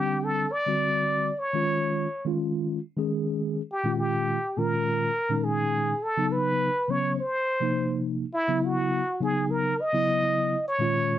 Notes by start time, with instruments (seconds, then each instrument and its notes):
Already playing: tine electric piano D3 G3 C4 D4, muted trumpet G4
0.24 muted trumpet A4
0.52 muted trumpet D5
0.66 tine electric piano D3 G3 C4 F#4
1.39 muted trumpet C#5
1.53 tine electric piano D#3 G#3 C#4 F4
2.25 tine electric piano D#3 G#3 C#4 F4
2.97 tine electric piano D#3 G#3 C#4 G#4
3.72 muted trumpet G4
3.84 tine electric piano A#2 D#3 G#3 C#4 F4
3.99 muted trumpet G4
4.57 tine electric piano A#2 D#3 G#3 C#4 F4, muted trumpet A#4
5.29 tine electric piano A#2 D#3 G#3 C#4 D#4
5.44 muted trumpet G#4
6.03 muted trumpet A4
6.17 tine electric piano C#3 F#3 B3 D#4
6.32 muted trumpet B4
6.88 tine electric piano C#3 F#3 B3 C#4, muted trumpet C#5
7.19 muted trumpet C5
7.60 tine electric piano C3 F3 A#3 D#4
8.34 muted trumpet E4
8.48 tine electric piano C#3 F#3 B3 E4
8.65 muted trumpet F#4
9.20 tine electric piano C#3 F#3 B3 D#4, muted trumpet G#4
9.50 muted trumpet A#4
9.81 muted trumpet D#5
9.93 tine electric piano C#3 F#3 B3 E4
10.68 muted trumpet C#5
10.79 tine electric piano A#2 D#3 G#3 C#4 F4